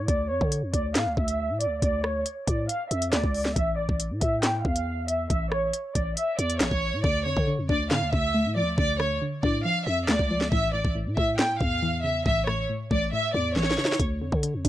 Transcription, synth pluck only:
0, 0, Header, 1, 2, 480
1, 0, Start_track
1, 0, Key_signature, -1, "minor"
1, 0, Tempo, 434783
1, 93, Time_signature, 4, 2, 24, 8
1, 16217, End_track
2, 0, Start_track
2, 0, Title_t, "Synth pluck"
2, 0, Program_c, 0, 84
2, 7772, Note_on_c, 0, 50, 93
2, 7998, Note_off_c, 0, 50, 0
2, 8011, Note_on_c, 0, 50, 84
2, 8237, Note_off_c, 0, 50, 0
2, 8250, Note_on_c, 0, 50, 89
2, 8494, Note_on_c, 0, 62, 93
2, 8720, Note_off_c, 0, 50, 0
2, 8734, Note_on_c, 0, 50, 89
2, 8961, Note_off_c, 0, 50, 0
2, 8975, Note_on_c, 0, 50, 77
2, 9211, Note_on_c, 0, 57, 85
2, 9452, Note_on_c, 0, 53, 86
2, 9678, Note_off_c, 0, 50, 0
2, 9691, Note_on_c, 0, 50, 98
2, 9693, Note_off_c, 0, 62, 0
2, 9918, Note_off_c, 0, 50, 0
2, 9931, Note_on_c, 0, 50, 79
2, 10161, Note_off_c, 0, 50, 0
2, 10175, Note_on_c, 0, 50, 83
2, 10412, Note_off_c, 0, 57, 0
2, 10412, Note_on_c, 0, 62, 90
2, 10641, Note_off_c, 0, 53, 0
2, 10654, Note_on_c, 0, 53, 90
2, 11132, Note_on_c, 0, 57, 93
2, 11363, Note_off_c, 0, 53, 0
2, 11374, Note_off_c, 0, 50, 0
2, 11376, Note_on_c, 0, 53, 81
2, 11612, Note_off_c, 0, 57, 0
2, 11612, Note_off_c, 0, 62, 0
2, 11612, Note_on_c, 0, 45, 98
2, 11615, Note_off_c, 0, 53, 0
2, 11839, Note_off_c, 0, 45, 0
2, 11852, Note_on_c, 0, 45, 78
2, 12078, Note_off_c, 0, 45, 0
2, 12092, Note_on_c, 0, 45, 84
2, 12334, Note_on_c, 0, 57, 97
2, 12560, Note_off_c, 0, 45, 0
2, 12573, Note_on_c, 0, 45, 84
2, 12799, Note_off_c, 0, 45, 0
2, 12812, Note_on_c, 0, 45, 77
2, 13052, Note_on_c, 0, 52, 92
2, 13291, Note_on_c, 0, 49, 86
2, 13518, Note_off_c, 0, 45, 0
2, 13532, Note_on_c, 0, 45, 85
2, 13533, Note_off_c, 0, 57, 0
2, 13758, Note_off_c, 0, 45, 0
2, 13771, Note_on_c, 0, 45, 84
2, 14000, Note_off_c, 0, 45, 0
2, 14013, Note_on_c, 0, 45, 76
2, 14250, Note_on_c, 0, 57, 90
2, 14252, Note_off_c, 0, 52, 0
2, 14478, Note_off_c, 0, 45, 0
2, 14491, Note_on_c, 0, 45, 91
2, 14492, Note_off_c, 0, 49, 0
2, 14717, Note_off_c, 0, 45, 0
2, 14730, Note_on_c, 0, 45, 83
2, 14972, Note_on_c, 0, 52, 87
2, 15210, Note_on_c, 0, 49, 95
2, 15450, Note_on_c, 0, 50, 89
2, 15451, Note_off_c, 0, 45, 0
2, 15451, Note_off_c, 0, 49, 0
2, 15451, Note_off_c, 0, 57, 0
2, 15452, Note_off_c, 0, 52, 0
2, 15677, Note_off_c, 0, 50, 0
2, 15691, Note_on_c, 0, 50, 83
2, 15917, Note_off_c, 0, 50, 0
2, 15930, Note_on_c, 0, 50, 91
2, 16171, Note_on_c, 0, 62, 92
2, 16217, Note_off_c, 0, 50, 0
2, 16217, Note_off_c, 0, 62, 0
2, 16217, End_track
0, 0, End_of_file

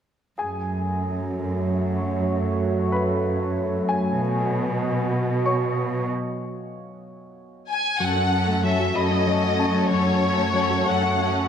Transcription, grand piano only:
0, 0, Header, 1, 2, 480
1, 0, Start_track
1, 0, Tempo, 634921
1, 290, Time_signature, 6, 3, 24, 8
1, 8680, End_track
2, 0, Start_track
2, 0, Title_t, "Grand piano"
2, 0, Program_c, 0, 0
2, 286, Note_on_c, 0, 68, 19
2, 294, Note_on_c, 0, 80, 25
2, 435, Control_c, 0, 64, 127
2, 1698, Note_off_c, 0, 68, 0
2, 1702, Note_off_c, 0, 80, 0
2, 2209, Note_on_c, 0, 83, 28
2, 2210, Note_on_c, 0, 71, 25
2, 2938, Note_on_c, 0, 80, 41
2, 3183, Control_c, 0, 64, 0
2, 3294, Control_c, 0, 64, 127
2, 3619, Note_off_c, 0, 83, 0
2, 3620, Note_off_c, 0, 71, 0
2, 4125, Note_on_c, 0, 85, 34
2, 4127, Note_on_c, 0, 73, 27
2, 4344, Note_off_c, 0, 80, 0
2, 4577, Note_off_c, 0, 85, 0
2, 4578, Note_off_c, 0, 73, 0
2, 6063, Control_c, 0, 64, 0
2, 6201, Control_c, 0, 64, 127
2, 6770, Note_on_c, 0, 83, 39
2, 7253, Note_on_c, 0, 81, 27
2, 7974, Note_on_c, 0, 73, 23
2, 7975, Note_on_c, 0, 85, 27
2, 8180, Note_off_c, 0, 83, 0
2, 8662, Note_off_c, 0, 81, 0
2, 8680, Note_off_c, 0, 73, 0
2, 8680, Note_off_c, 0, 85, 0
2, 8680, End_track
0, 0, End_of_file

